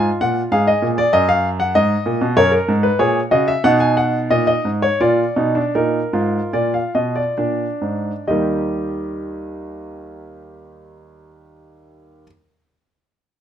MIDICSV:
0, 0, Header, 1, 2, 480
1, 0, Start_track
1, 0, Tempo, 617284
1, 1839, Time_signature, 4, 2, 24, 8
1, 1839, Tempo, 638298
1, 2799, Tempo, 680272
1, 3759, Tempo, 738916
1, 4239, Tempo, 808625
1, 5199, Tempo, 910470
1, 5679, Tempo, 944882
1, 8289, End_track
2, 0, Start_track
2, 0, Title_t, "Grand piano"
2, 0, Program_c, 0, 0
2, 0, Note_on_c, 0, 65, 88
2, 163, Note_on_c, 0, 46, 82
2, 163, Note_on_c, 0, 78, 101
2, 311, Note_off_c, 0, 46, 0
2, 311, Note_off_c, 0, 78, 0
2, 384, Note_off_c, 0, 65, 0
2, 402, Note_on_c, 0, 44, 81
2, 403, Note_on_c, 0, 68, 87
2, 403, Note_on_c, 0, 77, 101
2, 517, Note_off_c, 0, 77, 0
2, 524, Note_on_c, 0, 75, 99
2, 550, Note_off_c, 0, 44, 0
2, 639, Note_on_c, 0, 46, 83
2, 671, Note_off_c, 0, 75, 0
2, 762, Note_on_c, 0, 74, 103
2, 787, Note_off_c, 0, 46, 0
2, 877, Note_off_c, 0, 74, 0
2, 879, Note_on_c, 0, 75, 109
2, 880, Note_on_c, 0, 42, 91
2, 995, Note_off_c, 0, 75, 0
2, 1000, Note_on_c, 0, 77, 104
2, 1148, Note_off_c, 0, 77, 0
2, 1241, Note_on_c, 0, 78, 105
2, 1344, Note_off_c, 0, 42, 0
2, 1356, Note_off_c, 0, 78, 0
2, 1362, Note_on_c, 0, 75, 111
2, 1363, Note_on_c, 0, 44, 88
2, 1510, Note_off_c, 0, 44, 0
2, 1600, Note_on_c, 0, 46, 83
2, 1716, Note_off_c, 0, 46, 0
2, 1722, Note_on_c, 0, 47, 91
2, 1810, Note_off_c, 0, 68, 0
2, 1827, Note_off_c, 0, 75, 0
2, 1837, Note_off_c, 0, 47, 0
2, 1841, Note_on_c, 0, 42, 91
2, 1841, Note_on_c, 0, 70, 93
2, 1841, Note_on_c, 0, 73, 109
2, 1942, Note_off_c, 0, 70, 0
2, 1953, Note_on_c, 0, 70, 94
2, 1954, Note_off_c, 0, 73, 0
2, 1986, Note_off_c, 0, 42, 0
2, 2078, Note_on_c, 0, 44, 94
2, 2101, Note_off_c, 0, 70, 0
2, 2190, Note_on_c, 0, 71, 93
2, 2225, Note_off_c, 0, 44, 0
2, 2307, Note_off_c, 0, 71, 0
2, 2310, Note_on_c, 0, 68, 91
2, 2311, Note_on_c, 0, 46, 84
2, 2311, Note_on_c, 0, 73, 98
2, 2460, Note_off_c, 0, 68, 0
2, 2461, Note_off_c, 0, 46, 0
2, 2461, Note_off_c, 0, 73, 0
2, 2551, Note_on_c, 0, 66, 86
2, 2552, Note_on_c, 0, 75, 99
2, 2553, Note_on_c, 0, 49, 87
2, 2671, Note_off_c, 0, 75, 0
2, 2675, Note_on_c, 0, 76, 98
2, 2704, Note_off_c, 0, 66, 0
2, 2705, Note_off_c, 0, 49, 0
2, 2795, Note_off_c, 0, 76, 0
2, 2798, Note_on_c, 0, 47, 101
2, 2798, Note_on_c, 0, 78, 116
2, 2799, Note_on_c, 0, 63, 96
2, 2911, Note_off_c, 0, 78, 0
2, 2912, Note_on_c, 0, 80, 98
2, 3026, Note_off_c, 0, 80, 0
2, 3031, Note_on_c, 0, 78, 99
2, 3178, Note_off_c, 0, 78, 0
2, 3254, Note_off_c, 0, 47, 0
2, 3267, Note_on_c, 0, 46, 92
2, 3267, Note_on_c, 0, 75, 101
2, 3374, Note_off_c, 0, 75, 0
2, 3385, Note_on_c, 0, 75, 95
2, 3418, Note_off_c, 0, 46, 0
2, 3509, Note_on_c, 0, 44, 77
2, 3538, Note_off_c, 0, 75, 0
2, 3633, Note_on_c, 0, 73, 94
2, 3664, Note_off_c, 0, 44, 0
2, 3731, Note_off_c, 0, 63, 0
2, 3755, Note_off_c, 0, 73, 0
2, 3761, Note_on_c, 0, 46, 87
2, 3761, Note_on_c, 0, 65, 89
2, 3761, Note_on_c, 0, 74, 90
2, 3907, Note_off_c, 0, 46, 0
2, 3907, Note_off_c, 0, 65, 0
2, 3994, Note_on_c, 0, 47, 83
2, 3994, Note_on_c, 0, 63, 81
2, 4112, Note_off_c, 0, 63, 0
2, 4115, Note_on_c, 0, 62, 75
2, 4146, Note_off_c, 0, 47, 0
2, 4226, Note_off_c, 0, 74, 0
2, 4235, Note_off_c, 0, 62, 0
2, 4243, Note_on_c, 0, 46, 82
2, 4245, Note_on_c, 0, 63, 77
2, 4245, Note_on_c, 0, 70, 83
2, 4385, Note_off_c, 0, 46, 0
2, 4385, Note_off_c, 0, 63, 0
2, 4471, Note_on_c, 0, 44, 80
2, 4471, Note_on_c, 0, 65, 79
2, 4616, Note_off_c, 0, 44, 0
2, 4694, Note_off_c, 0, 70, 0
2, 4709, Note_on_c, 0, 46, 84
2, 4709, Note_on_c, 0, 74, 86
2, 4824, Note_off_c, 0, 74, 0
2, 4832, Note_on_c, 0, 77, 75
2, 4858, Note_off_c, 0, 46, 0
2, 4947, Note_off_c, 0, 77, 0
2, 4955, Note_on_c, 0, 75, 78
2, 4956, Note_on_c, 0, 47, 74
2, 5072, Note_off_c, 0, 75, 0
2, 5079, Note_on_c, 0, 74, 76
2, 5109, Note_off_c, 0, 47, 0
2, 5179, Note_off_c, 0, 65, 0
2, 5208, Note_on_c, 0, 62, 77
2, 5209, Note_on_c, 0, 46, 73
2, 5352, Note_off_c, 0, 46, 0
2, 5440, Note_on_c, 0, 44, 72
2, 5590, Note_off_c, 0, 44, 0
2, 5664, Note_off_c, 0, 74, 0
2, 5669, Note_off_c, 0, 62, 0
2, 5682, Note_on_c, 0, 75, 70
2, 5683, Note_on_c, 0, 39, 72
2, 5683, Note_on_c, 0, 67, 72
2, 5698, Note_on_c, 0, 51, 69
2, 5698, Note_on_c, 0, 55, 69
2, 7687, Note_off_c, 0, 75, 0
2, 7688, Note_off_c, 0, 39, 0
2, 7688, Note_off_c, 0, 67, 0
2, 7703, Note_off_c, 0, 51, 0
2, 7703, Note_off_c, 0, 55, 0
2, 8289, End_track
0, 0, End_of_file